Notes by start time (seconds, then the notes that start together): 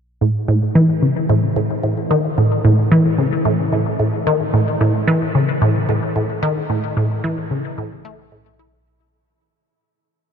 0.21 A2
0.48 A2
0.75 E3
1.02 C#3
1.29 A2
1.56 A2
1.83 A2
2.11 D#3
2.38 A2
2.65 A2
2.92 E3
3.18 C#3
3.45 A2
3.73 A2
4.00 A2
4.27 D#3
4.54 A2
4.81 A2
5.08 E3
5.35 C#3
5.62 A2
5.89 A2
6.16 A2
6.43 D#3
6.70 A2
6.97 A2
7.24 E3
7.51 C#3
7.78 A2
8.05 A3
8.32 A2
8.59 E4